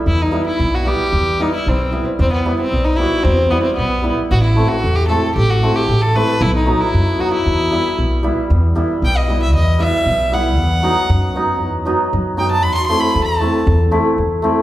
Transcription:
<<
  \new Staff \with { instrumentName = "Violin" } { \time 2/4 \key e \minor \tempo 4 = 115 e'16 dis'8 e'8 fis'16 g'8~ | g'8 dis'16 e'16 c'8. r16 | c'16 b8 c'8 dis'16 e'8 | c'8 b16 c'16 b8. r16 |
fis'16 e'8 fis'8 g'16 a'8 | g'16 fis'8 g'8 a'16 b'8 | e'16 dis'8 e'8. fis'16 e'16~ | e'4. r8 |
r4 g''16 dis''8 e''16 | dis''8 e''4 fis''8~ | fis''2 | r4. g''16 a''16 |
b''16 c'''16 c'''16 b''8 a''8.~ | a''16 r4. r16 | }
  \new Staff \with { instrumentName = "Hammered dulcimer" } { \time 2/4 \key e \minor r8 <g b e'>16 r8. <g b e'>16 r16 | r8 <g b e'>16 r8. <g b e'>16 r16 | r8 <g b e'>16 r8. <g b fis'>16 r16 | r8 <g b e'>16 r8. <g b e'>16 r16 |
r8 <a c' e'>16 r8. <a c' e'>16 r16 | r8 <a c' e'>16 r8. <a c' e'>16 r16 | r8 <fis b dis'>16 r8. <fis b dis'>16 r16 | r8 <g b e'>16 r8. <g b e'>16 r16 |
r8 <g b e'>16 r8. <g b e'>16 r16 | r8 <g b e'>16 r8. <g b e'>16 r16 | r8 <fis b dis'>16 r8. <fis b dis'>16 r16 | r8 <fis b dis'>16 r8. <fis b dis'>16 r16 |
r8 <a c' e'>16 r8. <a c' e'>16 r16 | r8 <a c' e'>16 r8. <a c' e'>16 r16 | }
  \new Staff \with { instrumentName = "Upright bass" } { \clef bass \time 2/4 \key e \minor e,4 b,,4 | e,4 b,,4 | e,4 b,,4 | e,4 b,,4 |
a,,4 e,4 | a,,4 a,,4 | b,,4 fis,4 | e,4 b,,4 |
e,4 b,,4 | e,4 b,,4 | e,4 fis,4 | e,4 fis,4 |
e,4 e,4 | e,4 e,4 | }
>>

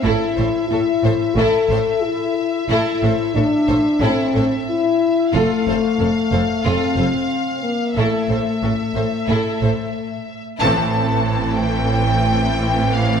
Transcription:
<<
  \new Staff \with { instrumentName = "Violin section" } { \time 4/4 \key a \minor \tempo 4 = 91 e''1~ | e''1 | f''1 | e''2.~ e''8 r8 |
a''4. g''2 f''8 | }
  \new Staff \with { instrumentName = "Viola section" } { \time 4/4 \key a \minor a'8 a'8 a'8 a'8 a'8 a'8 r4 | a'8 a'8 a'8 a'8 a'8 a'8 r4 | a'8 a'8 a'8 a'8 a'8 a'8 r4 | a'8 a'8 a'8 a'8 a'8 a'8 r4 |
<e c'>1 | }
  \new Staff \with { instrumentName = "Violin section" } { \time 4/4 \key a \minor e'8 c''8 a'8 c''8 e'8 c''8 r4 | e'8 c''8 a'8 c''8 e'8 c''8 r4 | f'8 c''8 a'8 c''8 f'8 c''8 r4 | e'8 c''8 a'8 c''8 e'8 c''8 r4 |
<e' a'>1 | }
  \new Staff \with { instrumentName = "French horn section" } { \time 4/4 \key a \minor e'4 e'4 a'4 e'4 | e'4 d'4 c'4 e'4 | a2 c'4. bes8 | a2.~ a8 r8 |
<e c'>1 | }
  \new Staff \with { instrumentName = "Cello section" } { \clef bass \time 4/4 \key a \minor a,8 a,8 a,8 a,8 a,8 a,8 r4 | a,8 a,8 a,8 a,8 a,8 a,8 r4 | f,8 f,8 f,8 f,8 f,8 f,8 r4 | a,8 a,8 a,8 a,8 a,8 a,8 r4 |
a,1 | }
  \new Staff \with { instrumentName = "Double bass section" } { \clef bass \time 4/4 \key a \minor a,,8 a,,8 a,,8 a,,8 a,,8 a,,8 r4 | a,,8 a,,8 a,,8 a,,8 a,,8 a,,8 r4 | f,,8 f,,8 f,,8 f,,8 f,,8 f,,8 r4 | a,,8 a,,8 a,,8 a,,8 a,,8 a,,8 r4 |
a,,1 | }
>>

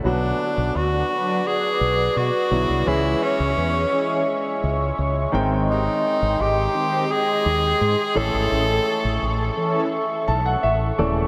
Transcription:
<<
  \new Staff \with { instrumentName = "Analog synth pad" } { \time 4/4 \key b \dorian \tempo 4 = 85 << { <d'' fis'' d'''>1 | <cis'' e'' cis'''>2.~ <cis'' e'' cis'''>8 <dis'' g'' bis''>8~ | <dis'' g'' bis''>2.~ <dis'' g'' bis''>8 <e'' cis'''>8~ | <e'' cis'''>1 | } \\ { b'1 | gis1~ | gis2.~ gis8 a'8~ | a'1 | } >> }
  \new Staff \with { instrumentName = "Tenor saxophone" } { \time 4/4 \key b \dorian d'4 fis'4 gis'4 fis'4 | e'8 cis'2 r4. | dis'4 g'4 gis'4. a'8~ | a'4. r2 r8 | }
  \new Staff \with { instrumentName = "Analog polysynth" } { \time 4/4 \key b \dorian <fis d' b'>16 r4 r16 <fis d' b'>8 r2 | <e cis' gis'>16 r4 r16 <e cis' gis'>8 r2 | <dis bis g'>16 r4 r16 <dis bis g'>8 r2 | <e cis' a'>16 r4 r16 <e cis' a'>8 r2 | }
  \new Staff \with { instrumentName = "Grand piano" } { \time 4/4 \key b \dorian r1 | r1 | r1 | r2 r8 a''16 fis''16 e''8 d''8 | }
  \new Staff \with { instrumentName = "Grand piano" } { \time 4/4 \key b \dorian <d fis b fis'>2.~ <d fis b fis'>8 <d fis b e'>8 | <e gis cis' gis'>2.~ <e gis cis' gis'>8 <dis gis bis g''>8~ | <dis gis bis g''>2.~ <dis gis bis g''>8 <e a cis' a'>8~ | <e a cis' a'>2.~ <e a cis' a'>8 <cis e a a'>8 | }
  \new Staff \with { instrumentName = "Fretless electric bass" } { \clef bass \time 4/4 \key b \dorian b,,8 r16 b,,16 d,8 r4 b,,8 b,16 r16 b,,16 c,16 | cis,8 r16 cis,16 e,8 r4 cis,8 cis,8 gis,,8~ | gis,,8 r16 gis,,16 gis,,8 r4 dis,8 gis,16 r16 a,,16 gis,,16 | a,,8 r16 a,,16 a,,8 r4 b,,8 a,,8 dis,,8 | }
>>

